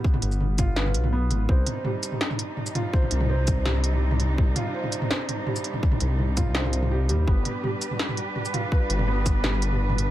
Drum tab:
HH |--x---x---x---x-|--x---x---x---x-|--x---x---x---x-|--x---x---x---x-|
SH |---x--x---------|------x------x--|------x---------|------x------x--|
SD |--------o-------|--------o-------|--------o-------|--------o-------|
T2 |-o--o-o--o-o--o-|--o-o--o-o--o-o-|-o-o--o-o--o-o--|o-o--o-o--o-o--o|
BD |o-----o---------|o---------------|o-----o---------|o---------------|

HH |--x---x---x---x-|--x---x---x---x-|--x---x---x---x-|
SH |------x---------|------x------x--|------x---------|
SD |--------o-------|--------o-------|--------o-------|
T2 |-o--o-o--o-o--o-|--o-o--o-o--o-o-|---o--o-o--o-o--|
BD |o-----o---------|o---------------|o-----o---------|